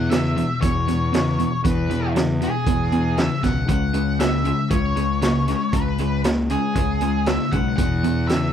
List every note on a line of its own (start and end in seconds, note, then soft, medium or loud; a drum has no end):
0.00 0.42 E2 medium
0.10 0.34 E2 medium
0.10 0.34 C#3 medium
0.10 0.61 E5 medium
0.10 snare loud
0.10 closed hi-hat medium
0.36 0.59 E2 medium
0.36 0.60 B2 medium
0.36 closed hi-hat medium
0.61 0.85 E2 medium
0.61 1.44 E2 medium
0.61 0.85 B2 medium
0.61 1.60 C#5 medium
0.61 kick loud
0.61 closed hi-hat medium
0.88 1.11 E2 medium
0.88 1.11 B2 medium
0.88 closed hi-hat medium
1.13 1.36 E2 medium
1.13 1.36 C#3 medium
1.13 snare loud
1.13 closed hi-hat medium
1.39 1.62 E2 medium
1.39 1.62 B2 medium
1.39 closed hi-hat medium
1.64 2.47 E2 medium
1.64 1.87 E2 medium
1.64 1.88 B2 medium
1.64 2.12 B4 medium
1.64 kick loud
1.64 closed hi-hat medium
1.90 2.13 E2 medium
1.90 2.13 B2 medium
1.90 closed hi-hat medium
2.16 2.39 E2 medium
2.16 2.39 C#3 medium
2.16 snare loud
2.16 closed hi-hat medium
2.42 2.64 E2 medium
2.42 2.65 B2 medium
2.42 3.21 G#4 medium
2.42 closed hi-hat medium
2.66 3.28 E2 medium
2.66 2.90 E2 medium
2.66 2.90 B2 medium
2.66 kick loud
2.66 closed hi-hat medium
2.92 3.15 E2 medium
2.92 3.16 B2 medium
2.92 closed hi-hat medium
3.17 3.41 E2 medium
3.17 3.41 C#3 loud
3.17 3.44 E5 loud
3.17 snare loud
3.17 closed hi-hat medium
3.43 3.64 C#2 loud
3.43 3.66 E2 medium
3.43 3.66 B2 medium
3.43 3.67 F#5 medium
3.43 kick medium
3.43 snare soft
3.43 closed hi-hat medium
3.68 4.51 C#2 medium
3.68 3.91 C#3 medium
3.68 3.92 G#3 medium
3.68 4.16 F#5 medium
3.68 kick loud
3.68 closed hi-hat medium
3.93 4.17 C#3 medium
3.93 4.17 G#3 medium
3.93 closed hi-hat medium
4.20 4.43 C#3 medium
4.20 4.43 A#3 medium
4.20 4.70 E5 medium
4.20 snare medium
4.20 closed hi-hat medium
4.44 4.68 C#3 medium
4.44 4.68 G#3 medium
4.44 closed hi-hat medium
4.70 5.53 C#2 medium
4.70 4.94 C#3 medium
4.70 4.94 G#3 medium
4.70 5.76 C#5 medium
4.70 kick loud
4.70 closed hi-hat medium
4.96 5.19 C#3 medium
4.96 5.20 G#3 medium
4.96 closed hi-hat medium
5.22 5.45 C#3 medium
5.22 5.45 A#3 medium
5.22 snare medium
5.22 closed hi-hat medium
5.48 5.71 C#3 medium
5.48 5.71 G#3 medium
5.48 snare soft
5.48 closed hi-hat medium
5.73 6.55 C#2 loud
5.73 5.96 C#3 medium
5.73 5.97 G#3 medium
5.73 6.21 B4 medium
5.73 kick loud
5.73 closed hi-hat medium
5.98 6.22 C#3 medium
5.98 6.23 G#3 medium
5.98 closed hi-hat medium
6.24 6.48 C#3 medium
6.24 6.48 A#3 medium
6.24 snare loud
6.24 closed hi-hat medium
6.50 6.73 C#3 medium
6.50 6.74 G#3 medium
6.50 7.29 G#4 medium
6.50 closed hi-hat medium
6.75 7.37 C#2 medium
6.75 6.99 C#3 medium
6.75 6.99 G#3 medium
6.75 kick loud
6.75 closed hi-hat medium
7.01 7.25 C#3 medium
7.01 7.25 G#3 medium
7.01 closed hi-hat medium
7.26 7.50 C#3 medium
7.26 7.50 A#3 medium
7.26 7.53 E5 medium
7.26 snare loud
7.26 closed hi-hat medium
7.52 7.73 B1 medium
7.52 7.76 C#3 medium
7.52 7.76 G#3 medium
7.52 7.76 F#5 medium
7.52 kick medium
7.52 closed hi-hat medium
7.77 8.53 E2 medium
7.77 8.01 E2 medium
7.77 8.02 B2 medium
7.77 8.25 F#5 loud
7.77 kick loud
7.77 closed hi-hat medium
8.04 8.27 E2 medium
8.04 8.27 B2 medium
8.04 closed hi-hat medium
8.28 8.53 E2 medium
8.28 8.53 C#3 medium
8.28 8.53 E5 medium
8.28 snare loud
8.28 closed hi-hat medium